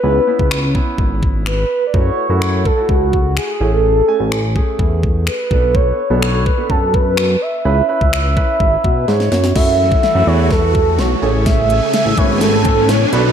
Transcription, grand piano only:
X:1
M:4/4
L:1/16
Q:1/4=126
K:F#m
V:1 name="Grand piano"
[B,CE]2 [B,CE]3 z [B,CE]6 z4 | [A,EF]2 z [A,EF]3 z [A,EF]6 z [A,CG]2- | [A,CG] z [A,Cg]3 z [A,CG]6 z2 [B,DA]2- | [B,DA]2 z [B,DA]3 z [B,DA]6 z3 |
[CEB]2 [CEB]3 z [CEB]6 z4 | [EFA]2 z [EFA]2 [EFA]6 z3 [CGA]2 | z [CGA]4 z [CBg]6 z2 [DAB]2 |]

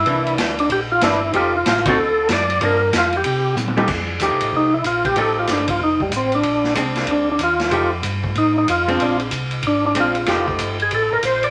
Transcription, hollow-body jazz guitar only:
X:1
M:4/4
L:1/8
Q:"Swing" 1/4=188
K:Fmix
V:1 name="Hollow-body jazz guitar"
[=E,B,D]3 z3 [E,B,D] z | [F,A,EG] z2 [D,CE_G] z4 | [F,B,D] z6 [F,A,EG] | z2 [F,A,EG]3 z3 |
[F,A,EG]3 z4 z | z2 [_A,CD]3 z3 | [F,A,EG] z6 [_A,CD] | [_A,CD] z4 z [A,CD] z |
[F,A,EG]3 z4 z |]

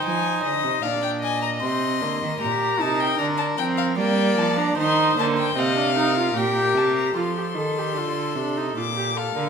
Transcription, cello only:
X:1
M:3/4
L:1/16
Q:1/4=76
K:Fdor
V:1 name="Cello" clef=bass
F,2 D, C, B,,4 C,2 D, E, | B,,2 C,2 D,2 F,2 G,2 F,2 | E,2 D,2 C,4 B,,2 C,2 | F,2 E,2 D,2 C,2 B,,3 D, |]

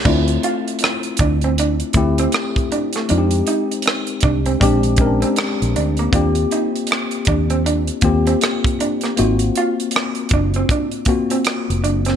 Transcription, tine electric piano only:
X:1
M:4/4
L:1/8
Q:"Swing 16ths" 1/4=79
K:Dm
V:1 name="Tine electric piano"
[A,CEF]3 z2 [A,CEG]3 | [_A,C_EFG]3 z [A,CDG] [A,C^CDB]3 | [B,CFG]3 z2 [B,CFG]3 | [^A,^B,^E^F]3 z2 [A,B,EF]3 |]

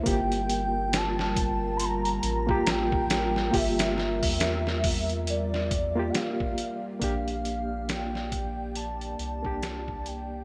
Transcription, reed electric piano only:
X:1
M:4/4
L:1/16
Q:"Swing 16ths" 1/4=69
K:Gdor
V:1 name="Reed electric piano"
[B,FG]8- [B,FG]3 [B,FG]4- [B,FG] | [B,FG]8- [B,FG]3 [B,FG]4- [B,FG] | [B,DG]8- [B,DG]3 [B,DG]4- [B,DG] |]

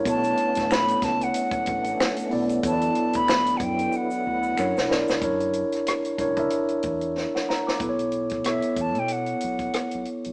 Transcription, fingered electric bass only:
X:1
M:4/4
L:1/16
Q:"Swing 16ths" 1/4=93
K:Bm
V:1 name="Fingered electric bass" clef=bass
B,,,2 z A,,,3 C,,2 z2 A,,,2 z2 B,,,2 | E,,2 z D,,3 F,,2 z2 D,,2 F,, B,,, B,,, C,, | F,,3 z3 C,,2 z2 E,,3 z3 | B,,,4- B,,, z E,, B,,3 B,,,2 z B,,, z B,,, |]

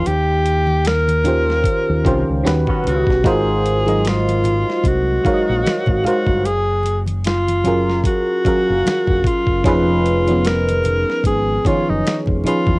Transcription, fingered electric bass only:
X:1
M:4/4
L:1/16
Q:"Swing 16ths" 1/4=75
K:Ebdor
V:1 name="Fingered electric bass" clef=bass
E,,8 z E,, C,, D,, E,, z D,, =B,,, | A,,,6- A,,, z C,,2 z B,,, z A,,, z =G,,, | G,,,8 z3 G,,, z F,,, z G,,, | F,,,6- F,,, z A,,,2 z G,,, z F,,, z =E,, |]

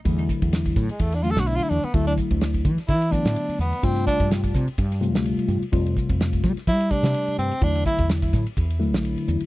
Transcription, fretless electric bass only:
X:1
M:4/4
L:1/16
Q:"Swing 16ths" 1/4=127
K:Em
V:1 name="Fretless electric bass" clef=bass
E,,2 z E,,3 A,, z E,,3 B,,,2 z E,, z | D,,2 z D,,3 E, z E,3 A,, z2 E,, z | G,,2 z G,,3 C, z G,,3 D,,2 z G,, z | =F,,2 z F,,3 G, z G,3 C, z2 G,, z |
E,,2 z E,,3 A,, z E,,3 B,,,2 z E,, z |]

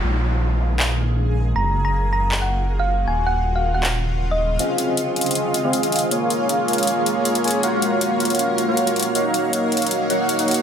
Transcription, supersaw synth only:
X:1
M:4/4
L:1/16
Q:1/4=158
K:Bbm
V:1 name="Supersaw synth"
z16 | z16 | z16 | [CFAef]8- [CFAef]3 [CFAef]4- [CFAef] |
[B,FAdf]12- [B,FAdf]2 [B,FAda]2 | [B,FGdf]8- [B,FGdf]3 [B,FGdf]4- [B,FGdf] | [B,EGdf]8- [B,EGdf]2 [B,EGdg]3 [B,EGdg]3 |]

